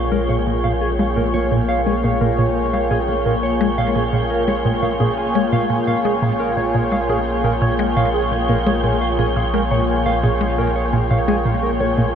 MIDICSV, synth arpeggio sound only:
0, 0, Header, 1, 2, 480
1, 0, Start_track
1, 0, Tempo, 697674
1, 81, Time_signature, 4, 2, 24, 8
1, 8359, End_track
2, 0, Start_track
2, 0, Title_t, "Synth arpeggio sound"
2, 0, Program_c, 0, 84
2, 81, Note_on_c, 0, 56, 80
2, 137, Note_off_c, 0, 56, 0
2, 202, Note_on_c, 0, 46, 76
2, 257, Note_off_c, 0, 46, 0
2, 322, Note_on_c, 0, 46, 74
2, 377, Note_off_c, 0, 46, 0
2, 443, Note_on_c, 0, 46, 75
2, 498, Note_off_c, 0, 46, 0
2, 682, Note_on_c, 0, 56, 76
2, 737, Note_off_c, 0, 56, 0
2, 802, Note_on_c, 0, 46, 74
2, 857, Note_off_c, 0, 46, 0
2, 922, Note_on_c, 0, 46, 75
2, 977, Note_off_c, 0, 46, 0
2, 1043, Note_on_c, 0, 46, 84
2, 1098, Note_off_c, 0, 46, 0
2, 1283, Note_on_c, 0, 56, 75
2, 1338, Note_off_c, 0, 56, 0
2, 1403, Note_on_c, 0, 46, 77
2, 1458, Note_off_c, 0, 46, 0
2, 1522, Note_on_c, 0, 46, 82
2, 1577, Note_off_c, 0, 46, 0
2, 1642, Note_on_c, 0, 46, 73
2, 1697, Note_off_c, 0, 46, 0
2, 1882, Note_on_c, 0, 56, 77
2, 1937, Note_off_c, 0, 56, 0
2, 2001, Note_on_c, 0, 46, 85
2, 2057, Note_off_c, 0, 46, 0
2, 2122, Note_on_c, 0, 46, 75
2, 2177, Note_off_c, 0, 46, 0
2, 2242, Note_on_c, 0, 46, 74
2, 2297, Note_off_c, 0, 46, 0
2, 2481, Note_on_c, 0, 56, 82
2, 2537, Note_off_c, 0, 56, 0
2, 2602, Note_on_c, 0, 46, 79
2, 2657, Note_off_c, 0, 46, 0
2, 2722, Note_on_c, 0, 46, 75
2, 2777, Note_off_c, 0, 46, 0
2, 2841, Note_on_c, 0, 46, 77
2, 2897, Note_off_c, 0, 46, 0
2, 3080, Note_on_c, 0, 56, 76
2, 3136, Note_off_c, 0, 56, 0
2, 3201, Note_on_c, 0, 46, 81
2, 3257, Note_off_c, 0, 46, 0
2, 3321, Note_on_c, 0, 46, 78
2, 3377, Note_off_c, 0, 46, 0
2, 3441, Note_on_c, 0, 46, 80
2, 3497, Note_off_c, 0, 46, 0
2, 3682, Note_on_c, 0, 56, 81
2, 3737, Note_off_c, 0, 56, 0
2, 3801, Note_on_c, 0, 46, 78
2, 3857, Note_off_c, 0, 46, 0
2, 3921, Note_on_c, 0, 46, 83
2, 3977, Note_off_c, 0, 46, 0
2, 4041, Note_on_c, 0, 46, 75
2, 4097, Note_off_c, 0, 46, 0
2, 4162, Note_on_c, 0, 56, 75
2, 4217, Note_off_c, 0, 56, 0
2, 4281, Note_on_c, 0, 46, 79
2, 4337, Note_off_c, 0, 46, 0
2, 4520, Note_on_c, 0, 46, 76
2, 4576, Note_off_c, 0, 46, 0
2, 4640, Note_on_c, 0, 46, 76
2, 4696, Note_off_c, 0, 46, 0
2, 4759, Note_on_c, 0, 56, 73
2, 4816, Note_off_c, 0, 56, 0
2, 4879, Note_on_c, 0, 46, 84
2, 4936, Note_off_c, 0, 46, 0
2, 5120, Note_on_c, 0, 46, 78
2, 5176, Note_off_c, 0, 46, 0
2, 5240, Note_on_c, 0, 46, 78
2, 5296, Note_off_c, 0, 46, 0
2, 5360, Note_on_c, 0, 56, 85
2, 5416, Note_off_c, 0, 56, 0
2, 5481, Note_on_c, 0, 46, 73
2, 5537, Note_off_c, 0, 46, 0
2, 5721, Note_on_c, 0, 46, 78
2, 5777, Note_off_c, 0, 46, 0
2, 5841, Note_on_c, 0, 46, 83
2, 5897, Note_off_c, 0, 46, 0
2, 5961, Note_on_c, 0, 56, 76
2, 6017, Note_off_c, 0, 56, 0
2, 6080, Note_on_c, 0, 46, 76
2, 6136, Note_off_c, 0, 46, 0
2, 6321, Note_on_c, 0, 46, 81
2, 6377, Note_off_c, 0, 46, 0
2, 6441, Note_on_c, 0, 46, 80
2, 6497, Note_off_c, 0, 46, 0
2, 6561, Note_on_c, 0, 56, 76
2, 6617, Note_off_c, 0, 56, 0
2, 6682, Note_on_c, 0, 46, 74
2, 6737, Note_off_c, 0, 46, 0
2, 6920, Note_on_c, 0, 46, 75
2, 6976, Note_off_c, 0, 46, 0
2, 7041, Note_on_c, 0, 46, 80
2, 7097, Note_off_c, 0, 46, 0
2, 7161, Note_on_c, 0, 56, 78
2, 7217, Note_off_c, 0, 56, 0
2, 7281, Note_on_c, 0, 46, 83
2, 7337, Note_off_c, 0, 46, 0
2, 7521, Note_on_c, 0, 46, 81
2, 7577, Note_off_c, 0, 46, 0
2, 7641, Note_on_c, 0, 46, 77
2, 7697, Note_off_c, 0, 46, 0
2, 7761, Note_on_c, 0, 56, 86
2, 7817, Note_off_c, 0, 56, 0
2, 7880, Note_on_c, 0, 46, 76
2, 7936, Note_off_c, 0, 46, 0
2, 8120, Note_on_c, 0, 46, 80
2, 8176, Note_off_c, 0, 46, 0
2, 8239, Note_on_c, 0, 46, 81
2, 8296, Note_off_c, 0, 46, 0
2, 8359, End_track
0, 0, End_of_file